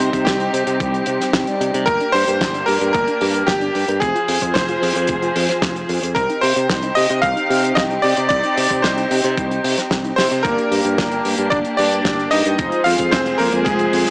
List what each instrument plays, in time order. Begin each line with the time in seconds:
Already playing: analog polysynth G3 C4 D#4 C5, string section C4 D#4 G4, electric grand piano C5
0.00 fingered electric bass C3, closed hi-hat
0.13 fingered electric bass C3, kick, closed hi-hat
0.25 fingered electric bass C2, electric grand piano G4, kick, snare, closed hi-hat
0.40 closed hi-hat
0.53 fingered electric bass C3, closed hi-hat
0.67 fingered electric bass C3, closed hi-hat
0.80 fingered electric bass C2, kick, closed hi-hat
0.94 closed hi-hat
1.06 fingered electric bass C3, analog polysynth G3 C4 D#4 C5, closed hi-hat
1.21 snare, closed hi-hat
1.33 fingered electric bass C2, kick, snare, closed hi-hat
1.47 analog polysynth G3 C4 D#4 D5, closed hi-hat
1.61 fingered electric bass C3, closed hi-hat
1.74 fingered electric bass C3, closed hi-hat
1.86 fingered electric bass G1, synth arpeggio sound A#3, string section A#3 D4, electric grand piano A#4, kick, closed hi-hat
2.00 synth arpeggio sound D4, closed hi-hat
2.12 fingered electric bass G2, synth arpeggio sound G4, electric grand piano C5, open hi-hat
2.28 fingered electric bass G2, synth arpeggio sound A#4, closed hi-hat
2.41 fingered electric bass G1, synth arpeggio sound A#3, kick, snare, closed hi-hat
2.54 synth arpeggio sound D4, closed hi-hat
2.66 fingered electric bass G2, synth arpeggio sound G4, electric grand piano A#4, open hi-hat
2.81 fingered electric bass G2, synth arpeggio sound A#4, closed hi-hat
2.93 fingered electric bass G1, synth arpeggio sound A#3, electric grand piano A#4, kick, closed hi-hat
3.07 synth arpeggio sound D4, closed hi-hat
3.21 fingered electric bass G2, synth arpeggio sound G4, open hi-hat
3.34 synth arpeggio sound A#4, closed hi-hat
3.47 fingered electric bass G1, synth arpeggio sound A#3, electric grand piano G4, kick, snare, closed hi-hat
3.61 synth arpeggio sound D4, closed hi-hat
3.75 fingered electric bass G2, synth arpeggio sound G4, open hi-hat
3.88 fingered electric bass G2, synth arpeggio sound A#4, closed hi-hat
4.00 fingered electric bass F1, string section F3 F4 G#4 C5, synth arpeggio sound C4, electric grand piano G#4, kick, closed hi-hat
4.15 synth arpeggio sound F4, closed hi-hat
4.28 fingered electric bass F2, synth arpeggio sound G#4, open hi-hat
4.42 fingered electric bass F2, synth arpeggio sound C5, kick, closed hi-hat
4.54 fingered electric bass F1, synth arpeggio sound C4, electric grand piano C5, kick, snare, closed hi-hat
4.68 synth arpeggio sound F4, closed hi-hat
4.82 fingered electric bass F2, synth arpeggio sound G#4, open hi-hat
4.95 fingered electric bass F2, synth arpeggio sound C5, closed hi-hat
5.07 fingered electric bass F1, synth arpeggio sound C4, kick, closed hi-hat
5.22 synth arpeggio sound F4, closed hi-hat
5.36 fingered electric bass F2, synth arpeggio sound G#4, open hi-hat
5.49 synth arpeggio sound C5, snare, closed hi-hat
5.62 fingered electric bass F1, synth arpeggio sound C4, kick, snare, closed hi-hat
5.76 synth arpeggio sound F4, closed hi-hat
5.89 fingered electric bass F2, synth arpeggio sound G#4, open hi-hat
6.03 fingered electric bass F2, synth arpeggio sound C5, closed hi-hat
6.15 fingered electric bass C2, synth arpeggio sound C4, string section C4 D#4 G4, electric grand piano A#4, kick, closed hi-hat
6.30 synth arpeggio sound D#4, closed hi-hat
6.41 fingered electric bass C3, synth arpeggio sound G4, electric grand piano C5, open hi-hat
6.56 fingered electric bass C3, synth arpeggio sound C5, closed hi-hat
6.69 fingered electric bass C2, synth arpeggio sound C4, kick, snare, closed hi-hat
6.82 synth arpeggio sound D#4, closed hi-hat
6.95 fingered electric bass C3, synth arpeggio sound G4, electric grand piano D#5, open hi-hat
7.10 fingered electric bass C3, synth arpeggio sound C5, closed hi-hat
7.22 fingered electric bass C2, synth arpeggio sound C4, electric grand piano F5, kick, closed hi-hat
7.36 synth arpeggio sound D#4, closed hi-hat
7.50 fingered electric bass C3, synth arpeggio sound G4, open hi-hat
7.63 synth arpeggio sound C5, closed hi-hat
7.75 fingered electric bass C2, synth arpeggio sound C4, electric grand piano D#5, kick, snare, closed hi-hat
7.90 synth arpeggio sound D#4, closed hi-hat
8.02 fingered electric bass C3, synth arpeggio sound G4, electric grand piano D5, open hi-hat
8.17 fingered electric bass C3, synth arpeggio sound C5, closed hi-hat
8.29 fingered electric bass C2, synth arpeggio sound C4, electric grand piano D5, kick, closed hi-hat
8.43 synth arpeggio sound D#4, closed hi-hat
8.57 fingered electric bass C3, synth arpeggio sound G4, open hi-hat
8.71 fingered electric bass C3, synth arpeggio sound C5, kick, closed hi-hat
8.82 fingered electric bass C2, synth arpeggio sound C4, electric grand piano C5, kick, snare, closed hi-hat
8.97 synth arpeggio sound D#4, closed hi-hat
9.11 fingered electric bass C3, synth arpeggio sound G4, open hi-hat
9.23 fingered electric bass C3, synth arpeggio sound C5, closed hi-hat
9.37 fingered electric bass C2, synth arpeggio sound C4, kick, closed hi-hat
9.51 synth arpeggio sound D#4, closed hi-hat
9.64 fingered electric bass C3, synth arpeggio sound G4, open hi-hat
9.78 synth arpeggio sound C5, snare, closed hi-hat
9.91 fingered electric bass C2, synth arpeggio sound C4, kick, snare, closed hi-hat
10.04 synth arpeggio sound D#4, closed hi-hat
10.16 fingered electric bass C3, electric grand piano C4 C5, synth arpeggio sound G4, snare, open hi-hat
10.31 fingered electric bass C3, synth arpeggio sound C5, closed hi-hat
10.43 fingered electric bass G1, analog polysynth A#3 D4 G4 D5, electric grand piano A#3 A#4, synth arpeggio sound A#3, string section A#3 D4 G4, kick, closed hi-hat
10.58 synth arpeggio sound D4, closed hi-hat
10.71 fingered electric bass G2, synth arpeggio sound G4, open hi-hat
10.85 fingered electric bass G2, closed hi-hat
10.98 fingered electric bass G1, synth arpeggio sound A#3, kick, snare, closed hi-hat
11.12 synth arpeggio sound D4, closed hi-hat
11.25 fingered electric bass G2, synth arpeggio sound G4, open hi-hat
11.38 fingered electric bass G2, synth arpeggio sound A#4, closed hi-hat
11.50 fingered electric bass G1, synth arpeggio sound A#3, electric grand piano D4 D5, kick, closed hi-hat
11.65 synth arpeggio sound D4, closed hi-hat
11.77 fingered electric bass G2, electric grand piano D4 D5, synth arpeggio sound G4, open hi-hat
11.92 synth arpeggio sound A#4, closed hi-hat
12.05 fingered electric bass G1, synth arpeggio sound A#3, kick, snare, closed hi-hat
12.19 synth arpeggio sound D4, closed hi-hat
12.31 fingered electric bass G2, analog polysynth A#3 D4 G4 G5, electric grand piano D#4 D#5, synth arpeggio sound G4, open hi-hat
12.45 fingered electric bass G2, synth arpeggio sound A#4, closed hi-hat
12.58 fingered electric bass F1, string section F3 F4 G#4 C5, analog polysynth G#3 C4 F4 C5, synth arpeggio sound C4, kick, closed hi-hat
12.72 synth arpeggio sound F4, closed hi-hat
12.84 fingered electric bass F2, electric grand piano F4 F5, synth arpeggio sound G#4, open hi-hat
12.99 fingered electric bass F2, synth arpeggio sound C5, kick, closed hi-hat
13.11 fingered electric bass F1, synth arpeggio sound C4, electric grand piano C4 C5, kick, snare, closed hi-hat
13.26 synth arpeggio sound F4, closed hi-hat
13.38 fingered electric bass F2, electric grand piano A#3 A#4, synth arpeggio sound G#4, open hi-hat
13.53 fingered electric bass F2, synth arpeggio sound C5, closed hi-hat
13.65 fingered electric bass F1, electric grand piano G#3 G#4, synth arpeggio sound C4, kick, closed hi-hat
13.79 synth arpeggio sound F4, closed hi-hat
13.93 fingered electric bass F2, synth arpeggio sound G#4, open hi-hat
14.06 analog polysynth G#3 C4 F4 C5, synth arpeggio sound C5, snare, closed hi-hat